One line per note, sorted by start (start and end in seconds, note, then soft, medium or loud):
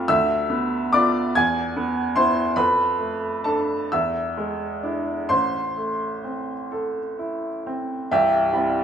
0.00 0.11 F2 medium
0.00 0.11 A3 soft
0.00 0.11 C4 soft
0.00 0.11 F4 soft
0.00 0.12 F5 medium
0.00 0.11 F6 medium
0.08 1.32 D2 medium
0.08 0.89 E5 medium
0.08 0.93 E6 loud
0.50 0.92 B3 soft
0.93 1.32 B3 soft
0.93 1.32 F4 soft
0.93 1.34 D5 medium
0.93 1.36 D6 medium
1.35 2.53 E2 medium
1.35 2.12 G#5 medium
1.35 2.15 G#6 medium
1.77 2.15 B3 soft
2.16 2.53 B3 soft
2.16 2.53 E4 soft
2.16 2.54 C5 medium
2.16 2.56 C6 medium
2.56 3.89 F2 medium
2.56 3.42 B4 medium
2.56 3.46 B5 medium
2.99 3.74 A3 soft
3.44 3.88 D4 soft
3.44 3.89 A4 medium
3.44 3.92 A5 medium
3.92 5.26 E2 soft
3.92 5.26 E5 medium
3.92 5.30 E6 medium
4.38 5.11 G#3 soft
4.83 5.26 D4 soft
4.83 5.26 E4 soft
5.29 8.07 A1 soft
5.29 6.68 C5 medium
5.29 6.71 C6 medium
5.77 6.53 A3 soft
6.24 7.00 C4 soft
6.72 7.48 A4 soft
7.19 7.95 E4 soft
7.67 8.12 C4 soft
8.11 8.51 C1 soft
8.11 8.51 C2 medium
8.11 8.84 G4 medium
8.11 8.84 E5 medium
8.53 8.84 G3 soft
8.53 8.84 C4 soft
8.53 8.84 E4 soft